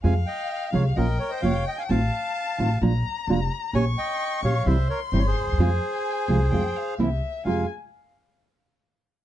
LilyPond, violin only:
\new Staff \with { instrumentName = "Violin" } { \time 4/4 \key f \minor \tempo 4 = 130 f''2 g''2 | a''2 bes''2 | des'''2 c'''2 | aes''2 g''8 f''8 e''4 |
aes''8 r2. r8 | }